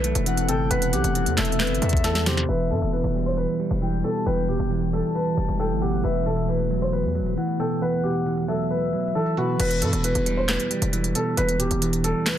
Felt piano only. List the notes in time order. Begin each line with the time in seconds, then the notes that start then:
Already playing: B4
0.49 A4
0.70 B4
0.93 G4
1.37 A4
1.60 B4
2.04 A4
2.26 G4
2.49 B4
2.71 A4
2.93 B4
3.26 C5
3.37 B4
4.04 A4
4.26 B4
4.49 G4
4.93 A4
5.15 B4
5.59 A4
5.82 G4
6.04 B4
6.26 A4
6.49 B4
6.82 C5
6.92 B4
7.60 A4
7.82 B4
8.04 G4
8.48 A4
8.71 B4
9.15 A4
9.38 F#4
9.60 B4
9.82 A4
10.04 B4
10.37 C5
10.48 B4
11.15 A4
11.37 B4
11.60 G4
12.04 A4
12.26 B4